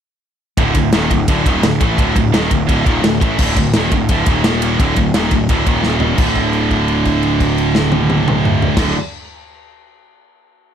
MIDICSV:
0, 0, Header, 1, 4, 480
1, 0, Start_track
1, 0, Tempo, 350263
1, 793, Time_signature, 4, 2, 24, 8
1, 14722, End_track
2, 0, Start_track
2, 0, Title_t, "Distorted electric guitar"
2, 0, Program_c, 0, 30
2, 797, Note_on_c, 0, 38, 101
2, 803, Note_on_c, 0, 45, 97
2, 817, Note_on_c, 0, 50, 102
2, 1022, Note_off_c, 0, 45, 0
2, 1025, Note_off_c, 0, 38, 0
2, 1038, Note_on_c, 0, 45, 63
2, 1039, Note_off_c, 0, 50, 0
2, 1041, Note_on_c, 0, 38, 54
2, 1230, Note_off_c, 0, 45, 0
2, 1231, Note_off_c, 0, 38, 0
2, 1274, Note_on_c, 0, 39, 99
2, 1283, Note_on_c, 0, 46, 99
2, 1287, Note_on_c, 0, 51, 112
2, 1501, Note_off_c, 0, 39, 0
2, 1506, Note_on_c, 0, 38, 64
2, 1514, Note_off_c, 0, 46, 0
2, 1516, Note_off_c, 0, 51, 0
2, 1521, Note_on_c, 0, 45, 73
2, 1705, Note_off_c, 0, 38, 0
2, 1713, Note_off_c, 0, 45, 0
2, 1757, Note_on_c, 0, 38, 94
2, 1768, Note_on_c, 0, 45, 105
2, 1779, Note_on_c, 0, 50, 93
2, 1989, Note_off_c, 0, 38, 0
2, 1995, Note_on_c, 0, 39, 84
2, 1997, Note_off_c, 0, 45, 0
2, 2003, Note_off_c, 0, 50, 0
2, 2016, Note_on_c, 0, 46, 96
2, 2020, Note_on_c, 0, 51, 99
2, 2232, Note_off_c, 0, 39, 0
2, 2241, Note_off_c, 0, 46, 0
2, 2244, Note_off_c, 0, 51, 0
2, 2245, Note_on_c, 0, 38, 59
2, 2247, Note_on_c, 0, 45, 66
2, 2437, Note_off_c, 0, 38, 0
2, 2438, Note_off_c, 0, 45, 0
2, 2468, Note_on_c, 0, 45, 91
2, 2477, Note_on_c, 0, 52, 99
2, 2492, Note_on_c, 0, 57, 107
2, 2709, Note_off_c, 0, 45, 0
2, 2714, Note_off_c, 0, 52, 0
2, 2715, Note_on_c, 0, 38, 103
2, 2722, Note_off_c, 0, 57, 0
2, 2728, Note_on_c, 0, 45, 112
2, 2737, Note_on_c, 0, 50, 114
2, 2950, Note_off_c, 0, 38, 0
2, 2952, Note_off_c, 0, 45, 0
2, 2965, Note_off_c, 0, 50, 0
2, 2966, Note_on_c, 0, 38, 61
2, 2968, Note_on_c, 0, 45, 69
2, 3159, Note_off_c, 0, 38, 0
2, 3160, Note_off_c, 0, 45, 0
2, 3198, Note_on_c, 0, 39, 106
2, 3206, Note_on_c, 0, 46, 103
2, 3218, Note_on_c, 0, 51, 112
2, 3431, Note_off_c, 0, 39, 0
2, 3436, Note_on_c, 0, 38, 65
2, 3439, Note_off_c, 0, 46, 0
2, 3445, Note_on_c, 0, 45, 70
2, 3446, Note_off_c, 0, 51, 0
2, 3635, Note_off_c, 0, 38, 0
2, 3640, Note_off_c, 0, 45, 0
2, 3681, Note_on_c, 0, 38, 94
2, 3704, Note_on_c, 0, 45, 101
2, 3707, Note_on_c, 0, 50, 98
2, 3905, Note_off_c, 0, 38, 0
2, 3910, Note_on_c, 0, 39, 92
2, 3913, Note_off_c, 0, 45, 0
2, 3919, Note_on_c, 0, 46, 94
2, 3924, Note_off_c, 0, 50, 0
2, 3930, Note_on_c, 0, 51, 101
2, 4154, Note_off_c, 0, 39, 0
2, 4158, Note_off_c, 0, 46, 0
2, 4164, Note_off_c, 0, 51, 0
2, 4164, Note_on_c, 0, 38, 68
2, 4169, Note_on_c, 0, 45, 70
2, 4360, Note_off_c, 0, 38, 0
2, 4363, Note_off_c, 0, 45, 0
2, 4416, Note_on_c, 0, 45, 88
2, 4426, Note_on_c, 0, 52, 101
2, 4434, Note_on_c, 0, 57, 106
2, 4639, Note_off_c, 0, 45, 0
2, 4650, Note_off_c, 0, 52, 0
2, 4650, Note_on_c, 0, 38, 111
2, 4655, Note_off_c, 0, 57, 0
2, 4655, Note_on_c, 0, 45, 114
2, 4661, Note_on_c, 0, 50, 106
2, 4885, Note_off_c, 0, 38, 0
2, 4887, Note_off_c, 0, 45, 0
2, 4890, Note_off_c, 0, 50, 0
2, 4901, Note_on_c, 0, 38, 62
2, 4913, Note_on_c, 0, 45, 70
2, 5089, Note_off_c, 0, 38, 0
2, 5095, Note_off_c, 0, 45, 0
2, 5137, Note_on_c, 0, 39, 100
2, 5140, Note_on_c, 0, 46, 101
2, 5145, Note_on_c, 0, 51, 111
2, 5368, Note_off_c, 0, 39, 0
2, 5370, Note_off_c, 0, 46, 0
2, 5373, Note_off_c, 0, 51, 0
2, 5381, Note_on_c, 0, 38, 61
2, 5390, Note_on_c, 0, 45, 69
2, 5570, Note_off_c, 0, 38, 0
2, 5574, Note_off_c, 0, 45, 0
2, 5612, Note_on_c, 0, 38, 98
2, 5616, Note_on_c, 0, 45, 102
2, 5634, Note_on_c, 0, 50, 115
2, 5837, Note_off_c, 0, 38, 0
2, 5842, Note_on_c, 0, 39, 100
2, 5846, Note_off_c, 0, 45, 0
2, 5852, Note_on_c, 0, 46, 101
2, 5857, Note_off_c, 0, 50, 0
2, 5870, Note_on_c, 0, 51, 90
2, 6068, Note_off_c, 0, 39, 0
2, 6073, Note_off_c, 0, 46, 0
2, 6079, Note_off_c, 0, 51, 0
2, 6084, Note_on_c, 0, 39, 89
2, 6090, Note_on_c, 0, 46, 102
2, 6095, Note_on_c, 0, 51, 100
2, 6561, Note_off_c, 0, 39, 0
2, 6564, Note_off_c, 0, 46, 0
2, 6567, Note_off_c, 0, 51, 0
2, 6568, Note_on_c, 0, 38, 92
2, 6576, Note_on_c, 0, 45, 113
2, 6583, Note_on_c, 0, 50, 124
2, 6803, Note_off_c, 0, 38, 0
2, 6807, Note_off_c, 0, 45, 0
2, 6810, Note_off_c, 0, 50, 0
2, 6834, Note_on_c, 0, 38, 53
2, 6842, Note_on_c, 0, 45, 72
2, 7015, Note_off_c, 0, 38, 0
2, 7019, Note_off_c, 0, 45, 0
2, 7059, Note_on_c, 0, 39, 93
2, 7072, Note_on_c, 0, 46, 104
2, 7077, Note_on_c, 0, 51, 89
2, 7288, Note_off_c, 0, 39, 0
2, 7294, Note_off_c, 0, 46, 0
2, 7296, Note_off_c, 0, 51, 0
2, 7309, Note_on_c, 0, 38, 68
2, 7315, Note_on_c, 0, 45, 68
2, 7491, Note_off_c, 0, 38, 0
2, 7495, Note_off_c, 0, 45, 0
2, 7535, Note_on_c, 0, 38, 93
2, 7544, Note_on_c, 0, 45, 88
2, 7554, Note_on_c, 0, 50, 102
2, 7762, Note_off_c, 0, 38, 0
2, 7768, Note_off_c, 0, 45, 0
2, 7768, Note_on_c, 0, 39, 97
2, 7773, Note_on_c, 0, 46, 92
2, 7774, Note_off_c, 0, 50, 0
2, 7792, Note_on_c, 0, 51, 102
2, 8001, Note_off_c, 0, 39, 0
2, 8003, Note_off_c, 0, 46, 0
2, 8013, Note_off_c, 0, 51, 0
2, 8026, Note_on_c, 0, 39, 89
2, 8037, Note_on_c, 0, 46, 87
2, 8039, Note_on_c, 0, 51, 93
2, 8464, Note_off_c, 0, 39, 0
2, 8470, Note_on_c, 0, 38, 104
2, 8494, Note_off_c, 0, 46, 0
2, 8495, Note_off_c, 0, 51, 0
2, 8499, Note_on_c, 0, 45, 110
2, 8525, Note_on_c, 0, 50, 101
2, 12007, Note_off_c, 0, 38, 0
2, 12012, Note_on_c, 0, 38, 99
2, 12030, Note_off_c, 0, 45, 0
2, 12035, Note_on_c, 0, 45, 120
2, 12058, Note_off_c, 0, 50, 0
2, 12063, Note_on_c, 0, 50, 99
2, 12233, Note_off_c, 0, 38, 0
2, 12245, Note_off_c, 0, 45, 0
2, 12259, Note_off_c, 0, 50, 0
2, 14722, End_track
3, 0, Start_track
3, 0, Title_t, "Picked electric bass"
3, 0, Program_c, 1, 34
3, 791, Note_on_c, 1, 26, 95
3, 1016, Note_off_c, 1, 26, 0
3, 1035, Note_on_c, 1, 26, 77
3, 1259, Note_off_c, 1, 26, 0
3, 1278, Note_on_c, 1, 27, 95
3, 1502, Note_off_c, 1, 27, 0
3, 1519, Note_on_c, 1, 26, 89
3, 1743, Note_off_c, 1, 26, 0
3, 1752, Note_on_c, 1, 26, 104
3, 1980, Note_off_c, 1, 26, 0
3, 2002, Note_on_c, 1, 27, 90
3, 2221, Note_off_c, 1, 27, 0
3, 2229, Note_on_c, 1, 26, 80
3, 2459, Note_off_c, 1, 26, 0
3, 2480, Note_on_c, 1, 33, 104
3, 2706, Note_off_c, 1, 33, 0
3, 2715, Note_on_c, 1, 26, 92
3, 2944, Note_off_c, 1, 26, 0
3, 2954, Note_on_c, 1, 26, 86
3, 3184, Note_off_c, 1, 26, 0
3, 3195, Note_on_c, 1, 27, 89
3, 3425, Note_off_c, 1, 27, 0
3, 3438, Note_on_c, 1, 26, 87
3, 3667, Note_off_c, 1, 26, 0
3, 3687, Note_on_c, 1, 26, 93
3, 3912, Note_off_c, 1, 26, 0
3, 3919, Note_on_c, 1, 27, 95
3, 4129, Note_off_c, 1, 27, 0
3, 4137, Note_on_c, 1, 26, 88
3, 4377, Note_off_c, 1, 26, 0
3, 4411, Note_on_c, 1, 33, 106
3, 4635, Note_off_c, 1, 33, 0
3, 4643, Note_on_c, 1, 26, 101
3, 4871, Note_off_c, 1, 26, 0
3, 4893, Note_on_c, 1, 26, 86
3, 5117, Note_off_c, 1, 26, 0
3, 5139, Note_on_c, 1, 27, 94
3, 5360, Note_off_c, 1, 27, 0
3, 5371, Note_on_c, 1, 26, 90
3, 5596, Note_off_c, 1, 26, 0
3, 5609, Note_on_c, 1, 26, 95
3, 5834, Note_off_c, 1, 26, 0
3, 5846, Note_on_c, 1, 27, 94
3, 6073, Note_off_c, 1, 27, 0
3, 6103, Note_on_c, 1, 27, 98
3, 6544, Note_off_c, 1, 27, 0
3, 6569, Note_on_c, 1, 26, 100
3, 6793, Note_off_c, 1, 26, 0
3, 6808, Note_on_c, 1, 26, 84
3, 7033, Note_off_c, 1, 26, 0
3, 7047, Note_on_c, 1, 27, 95
3, 7272, Note_off_c, 1, 27, 0
3, 7281, Note_on_c, 1, 26, 85
3, 7508, Note_off_c, 1, 26, 0
3, 7524, Note_on_c, 1, 26, 99
3, 7749, Note_off_c, 1, 26, 0
3, 7767, Note_on_c, 1, 27, 94
3, 7990, Note_off_c, 1, 27, 0
3, 7998, Note_on_c, 1, 27, 96
3, 8447, Note_off_c, 1, 27, 0
3, 8468, Note_on_c, 1, 26, 91
3, 11902, Note_off_c, 1, 26, 0
3, 12027, Note_on_c, 1, 26, 95
3, 12226, Note_off_c, 1, 26, 0
3, 14722, End_track
4, 0, Start_track
4, 0, Title_t, "Drums"
4, 787, Note_on_c, 9, 36, 111
4, 787, Note_on_c, 9, 51, 98
4, 924, Note_off_c, 9, 36, 0
4, 924, Note_off_c, 9, 51, 0
4, 1021, Note_on_c, 9, 51, 74
4, 1029, Note_on_c, 9, 36, 86
4, 1159, Note_off_c, 9, 51, 0
4, 1166, Note_off_c, 9, 36, 0
4, 1268, Note_on_c, 9, 51, 104
4, 1269, Note_on_c, 9, 38, 108
4, 1405, Note_off_c, 9, 51, 0
4, 1406, Note_off_c, 9, 38, 0
4, 1515, Note_on_c, 9, 36, 89
4, 1518, Note_on_c, 9, 51, 73
4, 1652, Note_off_c, 9, 36, 0
4, 1655, Note_off_c, 9, 51, 0
4, 1752, Note_on_c, 9, 51, 111
4, 1754, Note_on_c, 9, 36, 110
4, 1889, Note_off_c, 9, 51, 0
4, 1891, Note_off_c, 9, 36, 0
4, 1997, Note_on_c, 9, 36, 109
4, 2003, Note_on_c, 9, 51, 77
4, 2134, Note_off_c, 9, 36, 0
4, 2140, Note_off_c, 9, 51, 0
4, 2237, Note_on_c, 9, 51, 103
4, 2239, Note_on_c, 9, 38, 112
4, 2374, Note_off_c, 9, 51, 0
4, 2376, Note_off_c, 9, 38, 0
4, 2476, Note_on_c, 9, 36, 108
4, 2477, Note_on_c, 9, 51, 83
4, 2613, Note_off_c, 9, 36, 0
4, 2614, Note_off_c, 9, 51, 0
4, 2716, Note_on_c, 9, 36, 103
4, 2722, Note_on_c, 9, 51, 103
4, 2853, Note_off_c, 9, 36, 0
4, 2859, Note_off_c, 9, 51, 0
4, 2957, Note_on_c, 9, 36, 87
4, 2961, Note_on_c, 9, 51, 73
4, 3094, Note_off_c, 9, 36, 0
4, 3098, Note_off_c, 9, 51, 0
4, 3203, Note_on_c, 9, 51, 93
4, 3205, Note_on_c, 9, 38, 115
4, 3340, Note_off_c, 9, 51, 0
4, 3342, Note_off_c, 9, 38, 0
4, 3439, Note_on_c, 9, 51, 78
4, 3440, Note_on_c, 9, 36, 89
4, 3576, Note_off_c, 9, 51, 0
4, 3577, Note_off_c, 9, 36, 0
4, 3683, Note_on_c, 9, 36, 109
4, 3685, Note_on_c, 9, 51, 103
4, 3820, Note_off_c, 9, 36, 0
4, 3822, Note_off_c, 9, 51, 0
4, 3924, Note_on_c, 9, 51, 64
4, 3925, Note_on_c, 9, 36, 105
4, 4061, Note_off_c, 9, 51, 0
4, 4062, Note_off_c, 9, 36, 0
4, 4163, Note_on_c, 9, 51, 98
4, 4165, Note_on_c, 9, 38, 117
4, 4300, Note_off_c, 9, 51, 0
4, 4302, Note_off_c, 9, 38, 0
4, 4405, Note_on_c, 9, 36, 118
4, 4411, Note_on_c, 9, 51, 73
4, 4542, Note_off_c, 9, 36, 0
4, 4548, Note_off_c, 9, 51, 0
4, 4639, Note_on_c, 9, 49, 106
4, 4646, Note_on_c, 9, 36, 99
4, 4776, Note_off_c, 9, 49, 0
4, 4783, Note_off_c, 9, 36, 0
4, 4884, Note_on_c, 9, 36, 98
4, 4885, Note_on_c, 9, 51, 70
4, 5021, Note_off_c, 9, 36, 0
4, 5022, Note_off_c, 9, 51, 0
4, 5118, Note_on_c, 9, 51, 101
4, 5120, Note_on_c, 9, 38, 118
4, 5255, Note_off_c, 9, 51, 0
4, 5257, Note_off_c, 9, 38, 0
4, 5365, Note_on_c, 9, 51, 73
4, 5368, Note_on_c, 9, 36, 96
4, 5502, Note_off_c, 9, 51, 0
4, 5505, Note_off_c, 9, 36, 0
4, 5600, Note_on_c, 9, 51, 105
4, 5608, Note_on_c, 9, 36, 112
4, 5737, Note_off_c, 9, 51, 0
4, 5745, Note_off_c, 9, 36, 0
4, 5841, Note_on_c, 9, 51, 81
4, 5850, Note_on_c, 9, 36, 107
4, 5978, Note_off_c, 9, 51, 0
4, 5987, Note_off_c, 9, 36, 0
4, 6087, Note_on_c, 9, 51, 101
4, 6088, Note_on_c, 9, 38, 114
4, 6224, Note_off_c, 9, 51, 0
4, 6225, Note_off_c, 9, 38, 0
4, 6329, Note_on_c, 9, 51, 86
4, 6466, Note_off_c, 9, 51, 0
4, 6573, Note_on_c, 9, 36, 111
4, 6573, Note_on_c, 9, 51, 98
4, 6710, Note_off_c, 9, 36, 0
4, 6710, Note_off_c, 9, 51, 0
4, 6802, Note_on_c, 9, 51, 76
4, 6810, Note_on_c, 9, 36, 84
4, 6939, Note_off_c, 9, 51, 0
4, 6947, Note_off_c, 9, 36, 0
4, 7045, Note_on_c, 9, 51, 104
4, 7046, Note_on_c, 9, 38, 105
4, 7182, Note_off_c, 9, 51, 0
4, 7183, Note_off_c, 9, 38, 0
4, 7277, Note_on_c, 9, 51, 73
4, 7286, Note_on_c, 9, 36, 88
4, 7414, Note_off_c, 9, 51, 0
4, 7423, Note_off_c, 9, 36, 0
4, 7522, Note_on_c, 9, 51, 102
4, 7525, Note_on_c, 9, 36, 108
4, 7659, Note_off_c, 9, 51, 0
4, 7662, Note_off_c, 9, 36, 0
4, 7765, Note_on_c, 9, 36, 105
4, 7765, Note_on_c, 9, 51, 72
4, 7902, Note_off_c, 9, 36, 0
4, 7902, Note_off_c, 9, 51, 0
4, 7996, Note_on_c, 9, 38, 63
4, 8133, Note_off_c, 9, 38, 0
4, 8222, Note_on_c, 9, 43, 96
4, 8359, Note_off_c, 9, 43, 0
4, 8467, Note_on_c, 9, 49, 91
4, 8474, Note_on_c, 9, 36, 111
4, 8604, Note_off_c, 9, 49, 0
4, 8611, Note_off_c, 9, 36, 0
4, 8706, Note_on_c, 9, 49, 41
4, 8711, Note_on_c, 9, 36, 66
4, 8843, Note_off_c, 9, 49, 0
4, 8848, Note_off_c, 9, 36, 0
4, 8949, Note_on_c, 9, 57, 49
4, 9086, Note_off_c, 9, 57, 0
4, 9191, Note_on_c, 9, 36, 64
4, 9194, Note_on_c, 9, 49, 46
4, 9328, Note_off_c, 9, 36, 0
4, 9331, Note_off_c, 9, 49, 0
4, 9428, Note_on_c, 9, 57, 52
4, 9565, Note_off_c, 9, 57, 0
4, 9667, Note_on_c, 9, 49, 48
4, 9668, Note_on_c, 9, 36, 64
4, 9804, Note_off_c, 9, 49, 0
4, 9805, Note_off_c, 9, 36, 0
4, 9903, Note_on_c, 9, 57, 55
4, 10040, Note_off_c, 9, 57, 0
4, 10145, Note_on_c, 9, 36, 74
4, 10146, Note_on_c, 9, 49, 56
4, 10282, Note_off_c, 9, 36, 0
4, 10283, Note_off_c, 9, 49, 0
4, 10389, Note_on_c, 9, 57, 56
4, 10526, Note_off_c, 9, 57, 0
4, 10619, Note_on_c, 9, 38, 91
4, 10756, Note_off_c, 9, 38, 0
4, 10850, Note_on_c, 9, 48, 102
4, 10987, Note_off_c, 9, 48, 0
4, 11096, Note_on_c, 9, 48, 96
4, 11233, Note_off_c, 9, 48, 0
4, 11343, Note_on_c, 9, 47, 103
4, 11480, Note_off_c, 9, 47, 0
4, 11584, Note_on_c, 9, 45, 103
4, 11721, Note_off_c, 9, 45, 0
4, 11817, Note_on_c, 9, 43, 103
4, 11954, Note_off_c, 9, 43, 0
4, 12015, Note_on_c, 9, 49, 98
4, 12016, Note_on_c, 9, 38, 94
4, 12017, Note_on_c, 9, 36, 118
4, 12152, Note_off_c, 9, 49, 0
4, 12153, Note_off_c, 9, 38, 0
4, 12154, Note_off_c, 9, 36, 0
4, 14722, End_track
0, 0, End_of_file